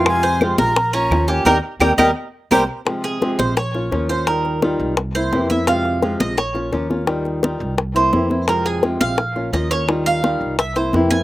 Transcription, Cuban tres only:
\new Staff \with { instrumentName = "Cuban tres" } { \time 4/4 \key f \minor \tempo 4 = 171 f'8 c''4 bes'4 des'4 g'8 | <g' bes' ees''>8 r8 <g' bes' ees''>8 <g' bes' ees''>8 r4 <g' bes' c''>8 r8 | r8 aes'4 c''8 des''4. c''8 | bes'4 r4. c''4 e''8 |
f''4. ees''8 des''4 r4 | r2 r8 c''4. | bes'8 aes'8 r8 f''4. ees''8 des''8 | r8 f''4. e''8 c''8 r8 aes''8 | }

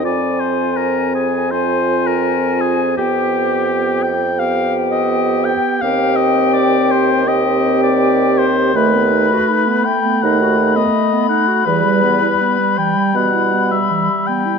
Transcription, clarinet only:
\new Staff \with { instrumentName = "Clarinet" } { \time 4/4 \key c \minor \tempo 4 = 82 f'2 f'2 | g'4.~ g'16 r16 g'2 | g'2 g'2 | \key e \minor a16 b16 dis'16 fis'16 dis'16 b16 a16 b16 dis'16 fis'16 dis'16 b16 a16 b16 dis'16 fis'16 |
e16 g16 b16 e'16 b16 g16 e16 g16 b16 e'16 b16 g16 e16 g16 b16 e'16 | }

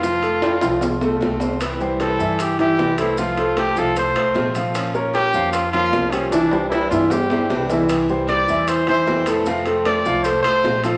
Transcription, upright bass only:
\new Staff \with { instrumentName = "Upright bass" } { \clef bass \time 4/4 \key f \major \tempo 4 = 153 f,4. c,4. c,4~ | c,4. g,4. c,4~ | c,4. c,4 c,8 bes,,4~ | bes,,4. f,4. c,4~ |
c,4. g,4. c,4~ | c,4. e,4. f,4~ | f,4. c,4 c,8 bes,,4 | }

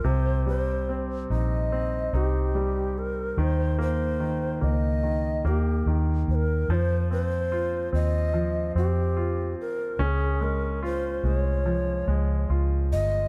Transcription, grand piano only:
\new Staff \with { instrumentName = "Grand piano" } { \time 4/4 \key f \minor \tempo 4 = 72 c8 g8 c'8 ees'8 c'8 ees'8 g4 | ees8 bes8 ees8 bes8 ees8 bes8 ees4 | f8 c'8 f'8 c'8 f8 c'8 f'4 | des'8 aes8 f'8 aes8 f8 aes8 f'4 | }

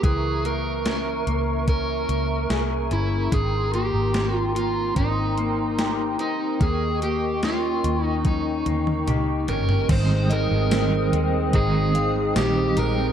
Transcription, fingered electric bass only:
\new Staff \with { instrumentName = "Fingered electric bass" } { \clef bass \time 4/4 \key aes \major \tempo 4 = 73 des,4. des,4 des,8 c,8 g,,8 | aes,,8. aes,,4~ aes,,16 aes,,4. r8 | ees,4. ees,4 ees,8 des,8 g,,8 | aes,,8. aes,,8. ees,8 aes,,4 bes,,8 bes,,8 | }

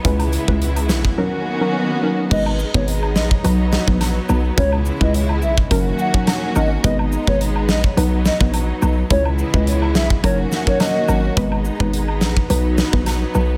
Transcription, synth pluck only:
\new Staff \with { instrumentName = "Synth pluck" } { \time 4/4 \key b \major \tempo 4 = 106 <gis cis' e' b'>16 r8 <gis cis' e' b'>16 r4 <fis cis' dis' ais'>16 r8 <fis cis' dis' ais'>16 r8 <fis cis' dis' ais'>16 r16 | <gis b dis' b'>16 r8 <gis b dis' b'>16 r4 <fis b dis' b'>16 r8 <fis b dis' b'>16 r8 <fis b dis' b'>16 r16 | <gis cis' e' b'>16 r8 <gis cis' e' b'>16 r4 <fis cis' dis' ais'>16 r8 <fis cis' dis' ais'>16 r8 <fis cis' dis' ais'>16 r16 | <gis b dis' b'>16 r8 <gis b dis' b'>16 r4 <fis b dis' b'>16 r8 <fis b dis' b'>16 r8 <fis b dis' b'>16 r16 |
<gis cis' e' b'>16 r8 <gis cis' e' b'>16 r4 <fis cis' dis' ais'>16 r8 <fis cis' dis' ais'>16 r8 <fis cis' dis' ais'>16 r16 | <gis b dis' b'>16 r8 <gis b dis' b'>16 r4 <fis b dis' b'>16 r8 <fis b dis' b'>16 r8 <fis b dis' b'>16 r16 | }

